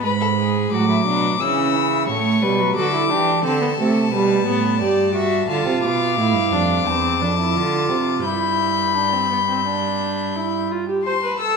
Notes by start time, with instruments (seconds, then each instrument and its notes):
0.03 cello G#2, viola G#3, violin B4 B5
0.20 violin A4
0.39 violin G#4
0.72 cello A2, viola F#3, violin F#4 D6
0.89 violin E4
1.05 cello B2, violin D4
1.40 cello C#3, viola E3, violin C#4 E6
1.75 violin E4
2.08 cello A2, viola A3, violin C#5 C#6
2.42 cello B2, viola G3, violin B4
2.60 viola F#3
2.75 cello D3, viola F#4, violin A4 D6
2.93 viola E4
3.10 cello E3, viola D4, violin G4
3.43 cello D3, viola C4, violin A4 A5
3.62 viola B3
3.79 cello C3, viola A3
4.11 cello B2, viola G3, violin B4
4.47 cello A2, viola B3, violin C#5
4.80 cello G2, viola G4, violin D5
5.14 viola F#4, violin E5
5.48 cello D3, viola F4, violin F5 A5
5.65 cello C3
5.82 cello B2, violin D6
6.16 cello A2, viola E4
6.33 cello G2
6.50 cello F2, viola D4
6.85 cello E2, viola C4, violin A5
7.20 cello F2, viola D4
7.38 viola E4
7.54 cello D3, viola F4
7.89 cello C3
8.24 cello G2, viola E4, violin B5 G6
8.94 viola D4
9.13 viola C4
9.31 viola B3
9.49 viola C4
9.66 viola D4
10.36 viola E4
10.71 viola F4
10.88 viola G4
11.04 viola C5, violin A5 C6
11.24 viola B4
11.40 viola A4, violin E6